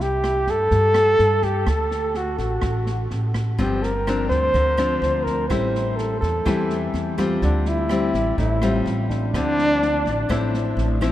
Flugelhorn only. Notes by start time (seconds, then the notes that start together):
0.01 G4
0.50 A4
1.44 G4
1.69 A4
2.17 F#4
2.39 F#4
3.61 G4
3.83 A#4
4.29 C5
5.24 A#4
5.47 C5
5.96 A4
6.21 A4
7.43 D4
7.68 E4
8.38 E4
9.10 D4